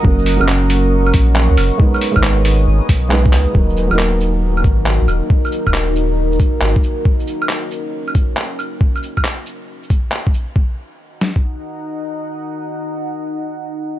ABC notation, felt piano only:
X:1
M:4/4
L:1/16
Q:"Swing 16ths" 1/4=137
K:Ebm
V:1 name="Felt piano"
[G,B,DB]3 [G,B,DB]12- [G,B,DB] | [A,CEc]3 [A,CEc]8- [A,CEc] [A,CEc] [A,C]3 | [G,B,EB]3 [G,B,EB]12- [G,B,EB] | z16 |
z16 | z16 | z16 | z16 |]